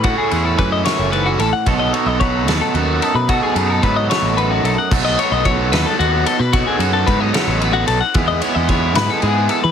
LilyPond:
<<
  \new Staff \with { instrumentName = "Clean electric guitar" } { \time 6/8 \key b \mixolydian \tempo 4. = 74 fis'16 gis'8 a'16 b'16 dis''16 cis''8 b'16 fis'16 a'16 fis''16 | r16 dis''16 cis''16 dis''16 cis''8 b'16 a'16 fis'8 a'16 b'16 | fis'16 gis'8 a'16 b'16 dis''16 cis''8 b'16 fis'16 a'16 fis''16 | r16 dis''16 cis''16 dis''16 cis''8 b'16 a'16 fis'8 a'16 b'16 |
fis'16 gis'8 a'16 b'16 dis''16 cis''8 b'16 fis'16 a'16 fis''16 | r16 dis''16 cis''16 dis''16 cis''8 b'16 a'16 gis'8 a'16 b'16 | }
  \new Staff \with { instrumentName = "Overdriven electric guitar" } { \time 6/8 \key b \mixolydian <a cis' e' a'>8 <a cis' e' a'>8 <a cis' e' a'>8 <a cis' e' a'>8 <a cis' e' a'>8 r8 | <fis b dis' a'>8 <fis b dis' a'>8 <fis b dis' a'>8 <fis b dis' a'>8 <fis b dis' a'>8 r8 | <fis b dis' a'>8 <fis b dis' a'>8 <fis b dis' a'>8 <fis b dis' a'>8 <fis b dis' a'>8 r8 | <fis b dis' a'>8 <fis b dis' a'>8 <fis b dis' a'>8 <fis b dis' a'>8 <fis b dis' a'>8 r8 |
<fis b dis' a'>8 <fis b dis' a'>8 <fis b dis' a'>8 <fis b dis' a'>8 <fis b dis' a'>8 r8 | <gis b e' gis'>8 <gis b e' gis'>8 <gis b e' gis'>8 <gis b e' gis'>8 <gis b e' gis'>8 r8 | }
  \new Staff \with { instrumentName = "Clean electric guitar" } { \time 6/8 \key b \mixolydian << { fis'8 e'8 a'2 | a'8 dis'8 b'8 a4 dis'8 | a'8 dis'8 b'8 a4 dis'8 | r2. |
r2. | r2. | } \\ { a,4 e8 fis,8 gis,8 a,8 | b,4 fis4 fis,4 | b,4 fis4 fis,4 | r2. |
r2. | r2. | } >> }
  \new Staff \with { instrumentName = "Picked electric bass" } { \clef bass \time 6/8 \key b \mixolydian a,16 r16 e,8 fis,8 r16 fis,,8. a,,16 r16 | b,,8 r16 b,,8. dis,16 r16 dis,8 r16 b,16~ | b,16 r16 fis,8 gis,8 r16 a,,8. b,,16 r16 | b,,8 r16 b,,8. dis,16 r16 dis,8 r16 b,16~ |
b,16 r16 fis,8 gis,8 r16 a,,8. b,,16 r16 | e,8 r16 e,8. gis,16 r16 gis,8 r16 e16 | }
  \new DrumStaff \with { instrumentName = "Drums" } \drummode { \time 6/8 <bd cymr>8 cymr8 <bd cymr>8 <cymr sn>8 cymr8 cymr8 | <bd cymr>8 cymr8 <bd cymr>8 <cymr sn>8 cymr8 cymr8 | <bd cymr>8 cymr8 <bd cymr>8 <cymr sn>8 cymr8 cymr8 | <cymc bd>8 cymr8 <bd cymr>8 <cymr sn>8 cymr8 cymr8 |
<bd cymr>8 cymr8 <bd cymr>8 <cymr sn>8 cymr8 cymr8 | <bd cymr>8 cymr8 <bd cymr>8 <cymr sn>8 cymr8 cymr8 | }
>>